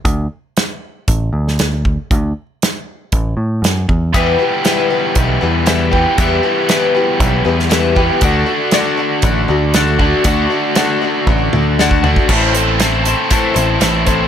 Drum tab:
CC |----------------|----------------|----------------|----------------|
HH |x---x---x---x---|x---x---x---x---|x---x---x---x---|x---x---x---x---|
SD |----o------oo---|----o-------o---|----o-------o---|----o------oo---|
T1 |----------------|----------------|----------------|----------------|
T2 |----------------|----------------|----------------|----------------|
FT |----------------|----------------|----------------|----------------|
BD |o-------o-----o-|o-------o-----o-|o-------o-----o-|o-------o-----o-|

CC |----------------|----------------|x---------------|
HH |x---x---x---x---|x---x-----------|--x-x-x-x-x-x-x-|
SD |----o-------o---|----o-------o---|----o-------o---|
T1 |----------------|--------o-------|----------------|
T2 |----------------|----------o-----|----------------|
FT |----------------|--------------o-|----------------|
BD |o-------o-----o-|o-------o----o-o|o-------o-----o-|